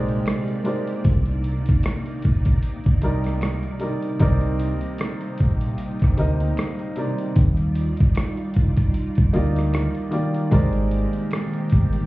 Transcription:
Already playing: A#1 C3 G#3 A#3 D#4 G4 A#4 C5 D5
0.08 closed hi-hat
0.26 finger snap, cross-stick, closed hi-hat
0.48 closed hi-hat
0.64 G#3 D#4 G4 A#4 C5 D5, closed hi-hat
0.87 closed hi-hat
1.04 C2 D#4, kick, closed hi-hat
1.26 closed hi-hat
1.44 closed hi-hat
1.66 kick, closed hi-hat
1.83 finger snap, cross-stick, closed hi-hat
2.06 closed hi-hat
2.22 A#1, kick, closed hi-hat
2.45 kick, closed hi-hat
2.62 closed hi-hat
2.84 kick, closed hi-hat
3.02 C2 C3 G3 D#4 A#4 D5, closed hi-hat
3.24 cross-stick, closed hi-hat
3.41 finger snap, cross-stick, closed hi-hat
3.63 closed hi-hat
3.79 C3 G3 D#4 A#4 D5, closed hi-hat
4.02 closed hi-hat
4.19 C2 C3 G3 A#3 C4 D#4 A#4 D5, kick, closed hi-hat
4.41 closed hi-hat
4.59 closed hi-hat
4.81 closed hi-hat
4.98 finger snap, cross-stick, closed hi-hat
5.21 closed hi-hat
5.38 A#1, kick, closed hi-hat
5.61 closed hi-hat
5.78 closed hi-hat
5.99 kick, closed hi-hat
6.04 cross-stick
6.17 D2 C3 C4 D#4 A#4 D#5, closed hi-hat
6.40 closed hi-hat
6.57 finger snap, cross-stick, closed hi-hat
6.79 closed hi-hat
6.96 C3 C4 D#4 A#4 D5, closed hi-hat
7.18 closed hi-hat
7.36 D#2 D#4 F4 D5, kick, closed hi-hat
7.57 closed hi-hat
7.75 closed hi-hat
7.97 kick, closed hi-hat
8.15 finger snap, cross-stick, closed hi-hat
8.37 closed hi-hat
8.54 C2, kick, closed hi-hat
8.77 kick, closed hi-hat
8.94 closed hi-hat
9.15 kick, closed hi-hat
9.33 D2 A#3 D#4 F4 G4 D5, closed hi-hat
9.56 cross-stick, closed hi-hat
9.74 finger snap, cross-stick, closed hi-hat
9.95 closed hi-hat
10.11 D#3 A#3 F4 G4 D5, closed hi-hat
10.34 closed hi-hat
10.51 G#1 D#3 G#3 A#3 C4 D#4 G4 A#4 C5 D5, kick, closed hi-hat
10.73 closed hi-hat
10.91 closed hi-hat
11.13 closed hi-hat
11.31 finger snap, cross-stick, closed hi-hat
11.53 closed hi-hat
11.69 G1, kick, closed hi-hat
11.93 closed hi-hat

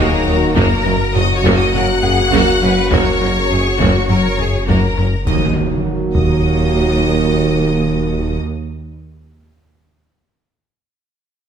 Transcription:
Already playing: D#1 D#3 F#3 A#3 D#4 F#4 A#4 D#5 F5 A#5
0.00 D#2 A#3 G#4
0.26 D#2 F#3 D#4 F#4
0.56 F#1 F#2 C#3 F#3 A#3 F#4 A#4 A#5, taiko
0.85 F#1 F#2 F#3 C#4
1.14 F#1 F#2 C#3 A#3 F#4 D#5 D#6
1.35 C#5 C#6
1.44 F#1 F#2 A#3 F#4, taiko
1.54 D#5 D#6
1.73 F#1 F#2 F#3 C#4 A#4 F#5 F#6, taiko low
2.03 F#2 G#4 F#5, taiko low
2.32 F#1 F#2 A#3 F#4, taiko
2.62 F#1 F#2 F#3 C#4 B4
2.91 F#1 F#2 A#3 F#4 A#4 C#5 C#6, taiko
3.21 F#1 F#2 F#3 C#4, taiko rim
3.50 F#1 F#2 C#3 A#3 G#4
3.79 F#1 F#2 A#3 F#4, taiko
4.09 F#1 F#2 F#3 C#4 A#4 C#5 C#6, taiko low
4.39 F#2 G#4, taiko low
4.67 F#1 F#2 A#3 F#4 A#4 A#5, taiko
4.97 F#1 F#2 F#3 C#4, taiko rim
5.26 D#1 D#2 D#3 F#3 A#3 F#4 D#5 D#6, taiko, impact
6.14 D#1 D#2 A#3 F#4 D#5 D#6, taiko

